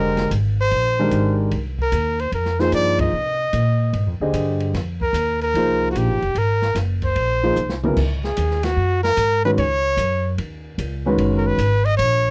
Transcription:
0.00 0.30 F1 medium
0.00 0.29 D3 medium
0.00 0.29 G#3 medium
0.00 0.29 G4 medium
0.00 0.33 A#4 medium
0.00 0.29 C5 medium
0.00 0.29 D#5 medium
0.17 snare soft
0.17 ride soft
0.31 0.70 G#1 medium
0.31 hi-hat pedal medium
0.31 ride medium
0.60 1.36 C5 medium
0.71 1.11 A#1 medium
0.71 ride medium
0.99 1.50 D#3 medium
0.99 1.50 G#3 medium
0.99 1.50 D4 medium
0.99 1.50 G4 medium
0.99 1.50 A#4 medium
1.11 1.51 G#1 medium
1.11 hi-hat pedal medium
1.11 ride medium
1.51 1.91 C2 medium
1.51 ride medium
1.79 2.22 A#4 medium
1.79 kick soft
1.92 2.31 D#2 medium
1.92 hi-hat pedal medium
1.92 ride medium
2.19 2.33 C5 medium
2.19 ride soft
2.32 2.71 F2 medium
2.32 2.62 A#4 medium
2.32 ride medium
2.46 snare soft
2.59 3.11 F3 medium
2.59 3.11 A#3 medium
2.59 3.11 D#4 medium
2.59 3.11 G#4 medium
2.59 2.73 C5 medium
2.59 3.11 C5 medium
2.59 snare soft
2.72 3.12 G2 medium
2.72 2.99 D5 medium
2.72 hi-hat pedal soft
2.72 ride medium
2.99 4.17 D#5 medium
2.99 kick medium
2.99 ride medium
3.13 3.52 C3 medium
3.53 3.92 A#2 medium
3.53 hi-hat pedal medium
3.53 ride medium
3.93 4.07 G#2 medium
3.93 ride soft
4.07 4.20 F2 soft
4.20 4.33 D#2 medium
4.20 4.72 D3 medium
4.20 4.72 G4 medium
4.20 4.72 G#4 medium
4.20 4.72 C5 medium
4.20 4.73 D#5 medium
4.33 4.73 G2 medium
4.33 hi-hat pedal medium
4.33 ride medium
4.60 ride soft
4.74 5.12 F2 medium
4.74 snare soft
4.74 ride medium
5.01 5.39 A#4 medium
5.01 kick soft
5.13 5.53 D#2 medium
5.13 hi-hat pedal medium
5.13 ride medium
5.41 5.87 A#4 medium
5.41 ride soft
5.54 5.94 C2 medium
5.54 6.17 F3 medium
5.54 6.17 A#3 medium
5.54 6.17 D#4 soft
5.54 6.17 G#4 soft
5.54 6.18 C5 medium
5.54 ride medium
5.91 6.08 A#1 medium
5.91 5.99 F#4 medium
5.95 6.39 G4 medium
5.95 hi-hat pedal soft
5.95 ride medium
6.08 6.21 G#1 soft
6.22 6.34 F1 medium
6.22 ride soft
6.35 6.74 G#1 medium
6.35 6.77 A#4 medium
6.35 ride medium
6.62 snare soft
6.75 7.14 F#1 medium
6.75 snare soft
6.75 hi-hat pedal medium
6.75 ride medium
7.02 7.80 C5 medium
7.02 kick soft
7.02 ride soft
7.16 7.55 A#1 medium
7.16 ride medium
7.43 7.55 F3 medium
7.43 7.55 A#3 medium
7.43 7.55 D#4 medium
7.43 7.56 G#4 medium
7.43 7.56 C5 medium
7.56 7.95 C2 medium
7.56 hi-hat pedal medium
7.69 snare soft
7.83 7.95 C#3 medium
7.83 7.96 F#3 medium
7.83 7.96 B3 medium
7.83 7.96 E4 medium
7.83 7.96 A#4 medium
7.83 mid tom medium
7.97 8.36 C#2 medium
7.97 kick medium
7.97 crash medium
8.24 8.66 G#4 medium
8.24 snare soft
8.37 8.76 D#2 medium
8.37 hi-hat pedal medium
8.37 ride medium
8.51 snare soft
8.63 9.03 F#4 medium
8.63 snare soft
8.63 ride medium
8.77 9.16 F#2 medium
9.03 9.41 A#4 loud
9.03 snare soft
9.17 9.56 G#2 medium
9.17 hi-hat pedal medium
9.17 ride medium
9.45 9.56 D#3 medium
9.45 9.57 G#3 medium
9.45 9.57 C#4 medium
9.45 9.57 F#4 medium
9.45 9.51 B4 medium
9.45 9.57 B4 medium
9.57 9.96 C#2 medium
9.57 10.35 C#5 loud
9.57 ride medium
9.97 10.36 F#2 medium
9.97 hi-hat pedal medium
9.97 ride medium
10.38 10.77 D#2 medium
10.38 ride medium
10.78 11.17 C#2 medium
10.78 hi-hat pedal medium
10.78 ride medium
11.06 11.56 D#3 medium
11.06 11.56 G#3 medium
11.06 11.57 C#4 medium
11.06 11.57 F#4 medium
11.06 11.57 B4 medium
11.18 11.57 F#1 medium
11.18 ride medium
11.38 11.48 A#4 medium
11.47 11.87 B4 medium
11.58 11.97 G#1 medium
11.58 hi-hat pedal medium
11.58 ride medium
11.85 11.97 D#5 medium
11.85 ride soft
11.97 12.31 A#1 medium
11.97 12.31 C#5 medium
11.97 ride medium

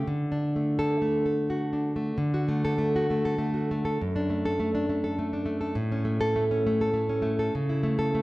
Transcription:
0.07 2.11 D3 medium
0.32 1.36 D4 medium
0.56 1.01 A3 medium
0.79 1.16 A4 medium
1.02 1.95 A3 soft
1.26 2.16 A4 medium
1.50 2.17 F#4 medium
1.73 2.17 D4 soft
1.96 2.17 A3 medium
2.18 3.97 D3 medium
2.34 2.95 F#4 medium
2.49 2.77 A3 medium
2.65 2.88 A4 medium
2.78 3.09 A3 medium
2.96 3.53 F#4 medium
3.10 3.37 A3 medium
3.25 3.84 A4 medium
3.38 3.70 A3 medium
3.54 4.00 F#4 medium
3.71 4.01 A3 medium
3.85 4.00 A4 medium
4.01 5.73 F#2 medium
4.16 4.73 D4 medium
4.30 4.58 A3 medium
4.45 4.70 A4 medium
4.60 4.88 A3 medium
4.75 5.32 D4 medium
4.89 5.17 A3 medium
5.04 5.60 A4 medium
5.19 5.44 A3 medium
5.33 5.77 D4 medium
5.46 5.76 A3 medium
5.61 5.76 A4 medium
5.75 7.48 A2 medium
5.92 6.50 C#4 medium
6.05 6.35 A3 medium
6.21 6.44 A4 medium
6.36 6.65 A3 medium
6.51 7.08 C#4 medium
6.67 6.92 A3 medium
6.81 7.38 A4 medium
6.94 7.21 A3 medium
7.09 7.54 C#4 medium
7.22 7.53 A3 medium
7.39 7.54 A4 medium
7.55 8.22 C#3 medium
7.69 8.22 E4 medium
7.83 8.13 A3 medium
7.99 8.22 A4 medium
8.15 8.22 A3 medium

